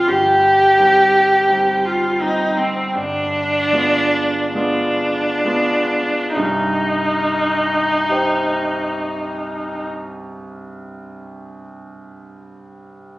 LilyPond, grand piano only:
<<
  \new Staff \with { instrumentName = "Grand piano" } { \time 4/4 \key c \minor \tempo 4 = 35 r1 | r4 <g' c'' ees''>2. | }
  \new Staff \with { instrumentName = "Grand piano" } { \time 4/4 \key c \minor g,,8 <g c' ees'>8 <g c' ees'>8 <g c' ees'>8 g,,8 <aes b f'>8 <aes b f'>8 <aes b f'>8 | <c, g,>1 | }
>>